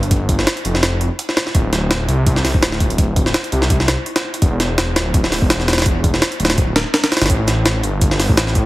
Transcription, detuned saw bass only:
0.00 0.46 G1 medium
0.65 1.09 F1 medium
1.55 2.07 D1 loud
2.09 2.53 C2 medium
2.54 3.33 D1 medium
3.52 3.96 C2 medium
4.42 4.95 E1 loud
4.96 5.40 D1 medium
5.42 6.21 E1 medium
6.40 6.84 D1 medium
7.21 7.29 G1 medium
7.30 7.82 A1 loud
7.84 8.28 G1 medium
8.29 8.66 A1 medium

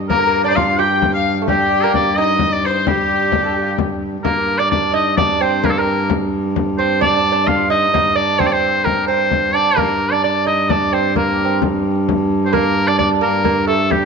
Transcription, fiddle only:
0.10 0.46 A#4 medium
0.44 0.49 D5 medium
0.50 0.58 D5 medium
0.56 0.79 F5 medium
0.79 1.11 G5 medium
1.14 1.35 F5 medium
1.48 2.14 G4 medium
2.19 2.61 D#5 medium
2.64 2.89 C5 medium
2.88 3.45 G4 medium
3.43 3.55 A4 soft
3.53 3.64 G4 soft
3.62 3.72 F4 medium
3.71 3.80 G4 soft

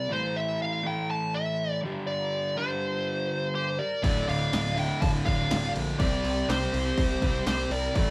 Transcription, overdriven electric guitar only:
0.09 0.82 A2 medium
0.09 0.83 E3 loud
0.09 0.82 A3 loud
0.83 1.81 A2 medium
0.83 1.81 E3 medium
0.83 1.80 A3 medium
1.82 2.54 G2 medium
1.82 2.55 D3 medium
1.82 2.56 G3 loud
2.56 3.77 G2 medium
2.56 3.78 D3 medium
2.56 3.79 G3 medium
4.03 4.75 D2 loud
4.03 4.76 A2 loud
4.03 4.75 D3 loud
4.76 5.99 D2 medium
4.76 5.99 A2 medium
4.76 5.98 D3 medium
5.99 6.72 C3 medium
5.99 6.73 G3 loud
5.99 6.72 C4 loud
6.72 7.94 C3 medium
6.72 7.95 G3 medium
6.72 7.94 C4 medium
7.94 8.10 A2 medium
7.94 8.10 E3 loud
7.94 8.10 A3 loud

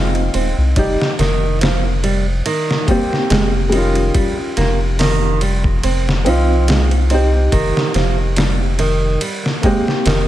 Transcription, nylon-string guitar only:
0.00 0.13 G#3 medium
0.34 0.55 C4 medium
0.76 0.98 G3 medium
1.19 1.59 D#3 loud
1.61 1.83 F3 medium
2.04 2.25 G3 loud
2.46 2.86 D#3 loud
2.88 3.10 G3 medium
3.30 3.52 G#3 loud
3.72 4.13 D#3 medium
4.15 4.37 G3 medium
4.57 4.79 A#3 loud
4.99 5.39 D#3 medium
5.42 5.63 G3 medium
5.84 6.05 C4 loud
6.26 6.66 F3 medium
6.68 6.90 G#3 medium
7.10 7.32 C4 medium
7.52 7.93 D#3 medium
7.95 8.17 F3 medium
8.37 8.59 G3 medium
8.79 9.20 D#3 loud
9.22 9.44 G3 medium
9.64 9.86 G#3 medium
10.06 10.28 D#3 loud

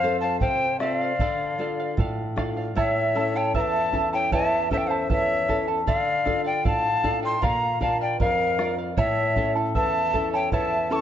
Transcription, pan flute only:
0.00 0.17 C5 medium
0.21 0.39 F5 medium
0.40 0.77 C5 medium
0.79 1.93 D5 medium
2.77 3.36 C#5 medium
3.36 3.55 C#5 medium
3.55 4.09 E5 medium
4.13 4.31 C#5 medium
4.34 4.69 E5 medium
4.72 4.78 C5 medium
4.78 4.88 E5 medium
4.87 5.10 C5 medium
5.12 5.65 C#5 medium
5.87 6.42 D5 medium
6.46 6.64 D5 medium
6.65 7.19 F5 medium
7.22 7.43 G5 medium
7.42 7.81 F5 medium
7.81 7.99 F5 medium
8.01 8.19 D5 medium
8.20 8.74 A#4 medium
8.98 9.52 C#5 medium
9.75 10.29 E5 medium
10.32 10.51 C#5 medium
10.52 10.92 E5 medium
10.91 11.01 A5 medium

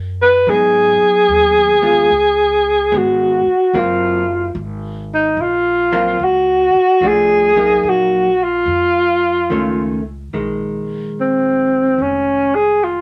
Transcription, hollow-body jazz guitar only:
0.47 1.72 F#3 soft
0.47 1.73 B3 medium
0.47 1.73 D#4 medium
1.82 2.07 G#3 soft
1.82 2.08 B3 soft
1.82 2.08 F4 medium
2.92 3.41 G#3 soft
2.92 3.41 B3 medium
3.74 4.22 F#3 medium
3.74 4.23 A#3 medium
3.74 4.23 C4 medium
3.74 4.23 F4 medium
5.92 6.17 F#3 medium
5.92 6.17 A#3 medium
5.92 6.17 C4 medium
5.92 6.17 F4 medium
7.02 7.50 F3 soft
7.02 7.51 A3 soft
7.02 7.51 D4 medium
7.56 8.27 F#3 medium
7.56 8.28 A#3 medium
7.56 8.28 D#4 medium
9.50 9.99 D#3 soft
9.50 10.00 A3 medium
9.50 10.00 C#4 medium
10.34 13.01 D#3 soft
10.34 13.01 G#3 soft

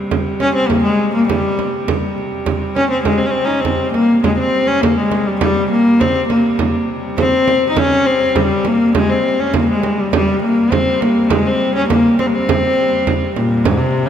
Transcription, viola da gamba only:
0.40 0.54 C#4 medium
0.55 0.69 C4 medium
0.68 0.83 A#3 medium
0.84 1.12 G#3 medium
1.15 1.27 A#3 medium
1.28 1.83 G3 medium
2.75 2.90 C#4 medium
2.90 3.03 C4 medium
3.04 3.19 G#3 medium
3.18 3.28 C4 medium
3.27 3.32 C#4 medium
3.31 3.44 C4 medium
3.44 3.62 C#4 medium
3.44 3.46 D#4 medium
3.60 3.92 C4 medium
3.93 4.21 A#3 medium
4.23 4.37 G#3 medium
4.39 4.69 C4 medium
4.68 4.83 C#4 medium
4.81 4.97 A#3 medium
4.97 5.29 G#3 medium
5.27 5.40 G3 medium
5.41 5.69 G3 medium
5.71 6.02 A#3 medium
6.00 6.28 C4 medium
6.28 6.57 A#3 medium
7.18 7.67 C4 loud
7.70 7.80 D#4 medium
7.78 8.07 C#4 loud
8.06 8.37 C4 medium
8.36 8.68 G3 medium
8.67 8.95 A#3 medium
8.96 9.11 G#3 medium
9.10 9.42 C4 medium
9.40 9.56 C#4 medium
9.55 9.69 A#3 medium
9.71 10.01 G#3 medium
10.00 10.14 G3 medium
10.15 10.42 G3 medium
10.43 10.73 A#3 medium
10.71 11.02 C4 medium
11.01 11.32 A#3 medium
11.30 11.48 G#3 medium
11.47 11.75 C4 medium
11.76 11.89 C#4 medium
11.89 12.17 A#3 medium
12.19 12.29 C4 medium
12.27 12.35 A#3 medium
12.34 13.36 C4 medium
13.36 13.66 A#2 medium
13.64 13.79 G#2 medium
13.77 14.07 C3 medium
14.06 14.09 C#3 medium

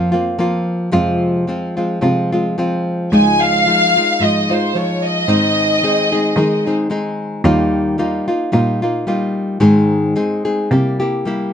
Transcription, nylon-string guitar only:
0.00 0.13 F3 medium
0.00 0.13 A#3 medium
0.00 0.12 C4 medium
0.00 0.11 F4 medium
0.12 0.38 A#3 soft
0.12 0.39 C4 soft
0.12 0.38 F4 soft
0.39 0.92 F3 medium
0.39 0.92 A#3 medium
0.39 0.92 C4 medium
0.39 0.93 F4 medium
0.92 1.47 F2 medium
0.92 1.47 C3 medium
0.92 1.47 F3 medium
0.92 1.47 G#3 medium
0.92 1.47 C4 medium
0.92 1.49 F4 medium
1.47 1.77 F3 soft
1.47 1.77 G#3 medium
1.47 1.76 C4 medium
1.47 1.76 F4 medium
1.77 2.00 F3 soft
1.77 2.00 G#3 soft
1.77 2.01 C4 soft
1.77 2.02 F4 soft
2.01 2.31 F3 medium
2.01 2.31 G#3 medium
2.01 2.31 C4 medium
2.01 2.31 F4 medium
2.32 2.57 F3 soft
2.32 2.57 G#3 soft
2.32 2.57 C4 soft
2.32 2.57 F4 soft
2.58 3.12 F3 medium
2.58 3.12 G#3 soft
2.58 3.12 C4 medium
2.58 3.13 F4 medium
3.12 3.66 C#3 medium
3.12 3.65 F3 medium
3.12 3.67 G#3 medium
3.12 3.68 D#4 medium
3.12 3.67 F4 medium
3.66 3.95 F3 soft
3.66 3.96 G#3 soft
3.66 3.96 D#4 soft
3.66 3.95 F4 soft
3.96 4.20 G#3 soft
3.96 4.20 D#4 soft
3.96 4.21 F4 soft
4.20 4.49 F3 soft
4.20 4.50 G#3 soft
4.20 4.50 D#4 medium
4.20 4.49 F4 soft
4.50 4.74 G#3 soft
4.50 4.74 D#4 soft
4.50 4.75 F4 soft
4.75 5.28 F3 soft
4.75 5.28 G#3 medium
4.75 5.29 D#4 soft
4.75 5.29 F4 medium
5.28 5.82 G#2 medium
5.28 7.44 D#3 medium
5.28 5.82 G#3 medium
5.28 5.82 C4 medium
5.28 5.84 D#4 medium
5.28 5.83 G#4 medium
5.83 6.12 G#3 soft
5.83 6.12 C4 medium
5.83 6.12 D#4 soft
5.83 6.11 G#4 medium
6.12 6.35 G#3 soft
6.12 6.36 C4 soft
6.12 6.36 D#4 soft
6.12 6.37 G#4 soft
6.37 6.66 G#3 medium
6.37 6.66 C4 medium
6.37 6.66 D#4 medium
6.37 6.65 G#4 medium
6.67 6.89 G#3 soft
6.67 6.89 C4 soft
6.67 6.90 D#4 soft
6.67 6.90 G#4 soft
6.90 7.44 G#3 medium
6.90 7.44 C4 medium
6.90 7.45 D#4 medium
6.90 7.45 G#4 medium
7.44 8.02 D#3 medium
7.44 7.97 G3 medium
7.44 7.98 A#3 medium
7.44 7.99 D#4 medium
7.44 7.98 F4 medium
7.98 8.28 G3 medium
7.98 8.28 A#3 medium
7.98 8.27 D#4 medium
7.98 8.27 F4 medium
8.28 8.51 A#3 soft
8.28 8.51 D#4 soft
8.28 8.52 F4 medium
8.52 8.82 G3 medium
8.52 8.82 A#3 medium
8.52 8.82 D#4 medium
8.52 8.81 F4 medium
8.82 9.07 A#3 soft
8.82 9.06 D#4 soft
8.82 9.07 F4 medium
9.07 9.60 G3 medium
9.07 9.60 A#3 medium
9.07 9.59 D#4 medium
9.07 9.61 F4 medium
9.60 10.15 G#2 medium
9.60 10.15 D#3 medium
9.60 10.14 G#3 medium
9.60 10.15 C4 medium
9.60 10.15 D#4 medium
9.60 10.15 G#4 medium
10.16 10.45 G#3 soft
10.16 10.45 C4 medium
10.16 10.44 D#4 medium
10.16 10.44 G#4 medium
10.45 10.71 G#3 soft
10.45 10.71 C4 soft
10.45 10.71 D#4 soft
10.45 10.70 G#4 soft
10.71 11.01 G3 medium
10.71 11.01 A#3 medium
10.71 11.00 E4 medium
10.71 10.99 G4 medium
11.00 11.25 A#3 soft
11.00 11.26 E4 soft
11.00 11.26 G4 soft
11.25 11.53 G3 medium
11.25 11.53 A#3 medium
11.25 11.53 E4 medium
11.25 11.53 G4 medium

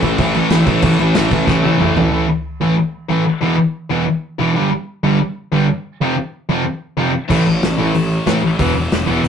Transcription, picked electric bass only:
0.03 0.14 A1 medium
0.19 0.40 A1 loud
0.51 0.61 A1 medium
0.66 0.77 A1 medium
0.83 0.94 A1 loud
0.99 1.10 A1 medium
1.16 1.26 A1 loud
1.32 1.42 A1 medium
1.48 1.69 A1 medium
1.79 1.90 A1 medium
1.96 2.07 A1 medium
7.30 7.41 A1 medium
7.47 7.58 A1 medium
7.63 7.74 A1 loud
7.79 7.90 A1 medium
7.95 8.17 A1 medium
8.28 8.38 A2 medium
8.43 8.54 A1 medium
8.60 8.71 E1 medium
8.75 8.86 E1 medium
8.92 9.03 E1 loud
9.08 9.19 E1 medium
9.23 9.28 E1 medium

